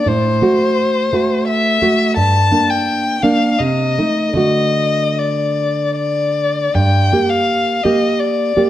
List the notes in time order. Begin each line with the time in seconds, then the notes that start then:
0.06 A2 C5
0.42 A3 F#4
1.13 A3 F#4
1.48 E5
1.82 A3 F#4
2.17 G2 A5
2.51 A#3 D4
2.69 G5
3.22 A#3 D4 F5
3.58 C3 D#5
3.99 A3 D#4
4.34 D3 A3 F#4 D#5
5.18 D5
5.96 D5
6.74 G2 G5
7.13 A#3 G4
7.29 F5
7.83 A#3 G4 D#5
8.19 D5
8.57 A#3 G4